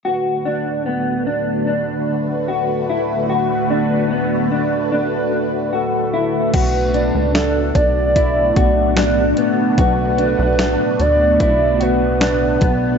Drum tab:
CC |--------|--------|x-------|--------|
HH |--------|--------|xxxxxxxx|xxxxxxxx|
SD |--------|--------|--o---o-|--o---o-|
BD |--------|--------|o--ooo--|o---o--o|